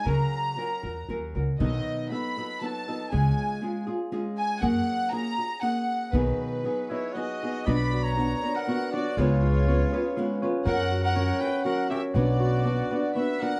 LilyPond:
<<
  \new Staff \with { instrumentName = "Violin section" } { \time 3/4 \key b \major \tempo 4 = 119 ais''2 r4 | dis''4 b''4 a''4 | gis''4. r4 gis''8 | fis''4 ais''4 fis''4 |
b'4. cis''8 dis''4 | \key b \minor b''8. ais''4 fis''8. d''8 | cis''2~ cis''8 r8 | fis''8. fis''8. g''8 fis''8 e''8 |
d''2 e''8 fis''8 | }
  \new Staff \with { instrumentName = "Trumpet" } { \time 3/4 \key b \major r2. | r2. | r2. | r2. |
r4. e'8 fis'4 | \key b \minor d''8. cis''4 ais'8. fis'8 | eis'2~ eis'8 r8 | ais'8. ais'8. b'8 ais'8 g'8 |
fis'2 b'8 ais'8 | }
  \new Staff \with { instrumentName = "Harp" } { \time 3/4 \key b \major r2. | r2. | r2. | r2. |
r2. | \key b \minor b'8 fis'8 d'8 b'8 fis'8 d'8 | gis'8 eis'8 cis'8 gis'8 eis'8 cis'8 | fis''8 fis'8 cis'8 fis''8 fis'8 cis'8 |
fis''8 fis'8 d'8 fis''8 fis'8 d'8 | }
  \new Staff \with { instrumentName = "Nylon-string guitar" } { \time 3/4 \key b \major <cis fis cis' fis' ais'>4 <fis cis' fis' ais'>8 <cis' fis' ais'>8 <fis cis' fis' ais'>8 <cis' fis' ais'>8 | <b, dis fis b dis' a'>4 <fis b dis' a'>8 <fis b dis' a'>8 <fis b dis' a'>8 <fis b dis' a'>8 | <cis gis cis' eis' gis'>4 <gis cis' eis' gis'>8 <cis' eis' gis'>8 <gis cis' eis' gis'>4 | <fis ais cis' fis' gis'>4 <ais cis' fis' gis'>8 <cis' fis' gis'>8 <ais cis' fis' gis'>4 |
<b, dis fis b dis' gis'>4 <fis b dis' gis'>8 <fis b dis' gis'>8 <fis b dis' gis'>8 <fis b dis' gis'>8 | \key b \minor <b, fis b d' fis'>4 <b d' fis' cis''>8 <b d' fis' cis''>8 <b d' fis' cis''>8 <b d' fis' cis''>8 | <cis gis b eis' b'>4 <gis b eis' b'>8 <b eis' b'>8 <gis b eis' b'>8 <b eis' b'>8 | <fis cis' fis' ais'>4 <fis cis' fis' ais'>8 <cis' fis' ais'>8 <fis cis' fis' ais'>8 <cis' fis' ais'>8 |
<b, fis b d' fis' b'>4 <b d' fis' b'>8 <b d' fis' b'>8 <b d' fis' b'>8 <b d' fis' b'>8 | }
  \new Staff \with { instrumentName = "Upright bass" } { \clef bass \time 3/4 \key b \major cis,8 r4 e,8 dis,8 cis,8 | b,,8 r2 r8 | cis,8 r2 r8 | fis,8 r2 r8 |
b,,8 r2 r8 | \key b \minor b,,2 r4 | cis,2 r4 | fis,2 r4 |
b,,2 r4 | }
>>